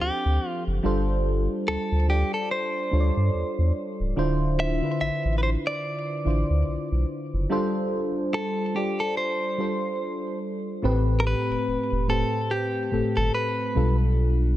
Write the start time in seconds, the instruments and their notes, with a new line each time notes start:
Already playing: fm electric piano F3 C4 D4 G4 A4 C5
0.01 sub bass D2, clean electric guitar G4
0.25 sub bass D2
0.48 clean electric guitar F4
0.67 sub bass F#1
0.83 sub bass G1, fm electric piano G3 D4 F4 A4 C5
1.68 sub bass D2, clean electric guitar A4
1.92 sub bass D2
2.08 fm electric piano G3 D4 F4 A4 D5, clean electric guitar G4
2.34 clean electric guitar A4
2.51 clean electric guitar C5
2.91 sub bass D2, fm electric piano G3 D4 F4 A4 C#5
3.00 fm electric piano D5
3.17 sub bass G2
3.34 sub bass E2
3.58 sub bass E2
4.00 sub bass C#1
4.16 sub bass D1, fm electric piano D3 D4 E4 F4 C5
4.60 clean electric guitar E5
4.82 fm electric piano D3 D4 E4 F4 B4
4.91 fm electric piano C5
5.00 sub bass A1, clean electric guitar E5
5.25 sub bass A1
5.38 clean electric guitar B4
5.43 clean electric guitar C5
5.67 clean electric guitar D5
6.25 sub bass A1, fm electric piano D3 D4 E4 F4 C5
6.50 sub bass D2
6.68 sub bass B1
6.91 sub bass B1
7.33 sub bass F#1
7.50 fm electric piano G3 D4 F4 A4 C5
8.34 clean electric guitar A4
8.74 fm electric piano G3 D4 F4 A4 D5, clean electric guitar G4
9.00 clean electric guitar A4
9.17 clean electric guitar C5
9.58 fm electric piano G3 D4 F4 A4 C5
10.82 sub bass A1, fm electric piano A2 A3 C4 G4 B4
11.20 clean electric guitar A#4
11.27 clean electric guitar B4
11.50 sub bass E1
11.67 sub bass E1
11.92 sub bass E1
12.08 fm electric piano A2 A3 C4 G4 C5, clean electric guitar A4
12.51 clean electric guitar G4
12.91 sub bass G1, fm electric piano A2 A3 C4 G4 A4
13.17 sub bass G1, clean electric guitar A4
13.35 clean electric guitar B4
13.74 sub bass B1, fm electric piano B2 G3 D4 F4 A4